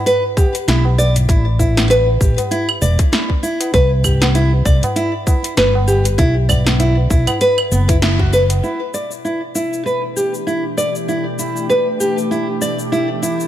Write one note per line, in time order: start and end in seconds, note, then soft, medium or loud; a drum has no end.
0.06 0.23 B4 loud
0.06 closed hi-hat soft
0.06 shaker soft
0.37 0.53 G4 medium
0.37 kick loud
0.37 tabla na medium
0.37 shaker medium
0.55 closed hi-hat medium
0.55 shaker soft
0.68 1.25 B1 medium
0.68 0.84 E4 loud
0.68 snare medium
0.68 closed hi-hat soft
0.68 shaker soft
0.85 tabla na soft
0.85 tabla tin medium
0.98 1.15 D5 medium
0.98 tabla na soft
0.98 shaker medium
1.16 closed hi-hat medium
1.16 tabla ge medium
1.16 shaker soft
1.29 2.17 A1 medium
1.29 1.45 E4 medium
1.29 kick loud
1.29 closed hi-hat soft
1.29 shaker soft
1.59 1.89 E4 medium
1.59 kick medium
1.59 tabla tin medium
1.59 tabla ge medium
1.59 shaker medium
1.77 snare medium
1.77 closed hi-hat soft
1.77 tabla na medium
1.77 shaker soft
1.90 2.06 B4 loud
1.90 closed hi-hat soft
1.90 shaker soft
2.07 tabla tin soft
2.21 2.35 A1 medium
2.21 2.37 G4 medium
2.21 kick loud
2.21 shaker medium
2.38 closed hi-hat soft
2.38 tabla na medium
2.38 tabla ge medium
2.38 shaker soft
2.51 2.67 E4 loud
2.51 closed hi-hat soft
2.51 shaker soft
2.69 claves medium
2.82 2.96 E1 loud
2.82 2.98 D5 medium
2.82 shaker medium
2.99 kick medium
2.99 closed hi-hat medium
2.99 shaker soft
3.12 3.29 E4 medium
3.12 snare medium
3.12 closed hi-hat soft
3.12 shaker soft
3.30 kick medium
3.43 3.72 E4 medium
3.43 shaker medium
3.60 closed hi-hat medium
3.60 tabla na medium
3.60 shaker soft
3.74 4.62 C2 loud
3.74 3.90 B4 loud
3.74 kick loud
3.74 closed hi-hat soft
3.74 shaker soft
4.04 4.20 G4 medium
4.04 kick medium
4.04 tabla tin medium
4.04 tabla ge medium
4.04 claves medium
4.04 shaker medium
4.22 snare medium
4.22 closed hi-hat medium
4.22 tabla na medium
4.22 shaker soft
4.35 4.51 E4 loud
4.35 closed hi-hat soft
4.35 shaker soft
4.53 tabla tin medium
4.65 4.80 C2 medium
4.65 4.82 D5 medium
4.65 kick medium
4.65 shaker medium
4.83 closed hi-hat medium
4.83 tabla na medium
4.83 tabla ge medium
4.83 shaker soft
4.96 5.12 E4 medium
4.96 closed hi-hat soft
4.96 shaker soft
5.27 5.56 E4 medium
5.27 kick loud
5.27 tabla na medium
5.27 shaker medium
5.44 closed hi-hat medium
5.44 shaker soft
5.57 6.15 G1 medium
5.57 5.73 B4 medium
5.57 snare medium
5.57 closed hi-hat soft
5.57 shaker soft
5.75 tabla na medium
5.75 tabla tin medium
5.88 6.04 G4 medium
5.88 tabla na soft
5.88 shaker medium
6.05 closed hi-hat medium
6.05 tabla ge medium
6.05 shaker soft
6.18 7.07 B1 medium
6.18 6.35 E4 loud
6.18 kick loud
6.18 closed hi-hat soft
6.18 shaker soft
6.49 6.65 D5 medium
6.49 kick medium
6.49 tabla tin medium
6.49 tabla ge medium
6.49 claves medium
6.49 shaker medium
6.66 snare medium
6.66 closed hi-hat medium
6.66 tabla na medium
6.66 shaker soft
6.80 6.96 E4 medium
6.80 closed hi-hat soft
6.80 shaker soft
6.97 tabla tin medium
7.10 7.24 B1 medium
7.10 7.40 E4 medium
7.10 kick medium
7.10 shaker medium
7.27 closed hi-hat medium
7.27 tabla na medium
7.27 tabla ge medium
7.27 claves medium
7.27 shaker soft
7.41 7.57 B4 loud
7.41 closed hi-hat soft
7.41 shaker soft
7.58 claves medium
7.71 8.60 F#1 loud
7.71 7.87 B3 medium
7.71 tabla na medium
7.71 shaker medium
7.89 7.96 E4 medium
7.89 kick medium
7.89 closed hi-hat medium
7.89 shaker soft
8.02 8.19 E4 medium
8.02 snare medium
8.02 closed hi-hat soft
8.02 shaker soft
8.19 8.32 F#4 medium
8.19 kick medium
8.33 8.43 B4 medium
8.33 shaker medium
8.49 closed hi-hat medium
8.49 tabla na medium
8.49 shaker soft
8.64 13.47 B2 medium
8.64 8.80 E4 medium
8.64 shaker soft
8.94 13.47 E3 medium
8.94 9.10 D5 medium
8.94 shaker medium
9.11 shaker soft
9.25 9.41 E4 medium
9.25 shaker soft
9.30 13.47 A3 medium
9.30 13.47 D4 medium
9.55 9.84 E4 medium
9.55 shaker medium
9.73 13.47 G4 medium
9.73 shaker soft
9.86 10.02 B4 medium
9.86 shaker soft
10.16 10.33 G4 medium
10.16 shaker medium
10.34 shaker soft
10.47 10.63 E4 medium
10.47 shaker soft
10.78 10.94 D5 medium
10.78 shaker medium
10.95 shaker soft
11.08 11.25 E4 medium
11.08 shaker soft
11.39 11.68 E4 medium
11.39 shaker medium
11.56 shaker soft
11.70 11.86 B4 medium
11.70 shaker soft
12.00 12.16 G4 medium
12.00 shaker medium
12.18 shaker soft
12.31 12.47 E4 medium
12.31 shaker soft
12.61 12.78 D5 medium
12.61 shaker medium
12.79 shaker soft
12.92 13.08 E4 medium
12.92 shaker soft
13.22 13.47 E4 medium
13.22 shaker medium
13.40 shaker soft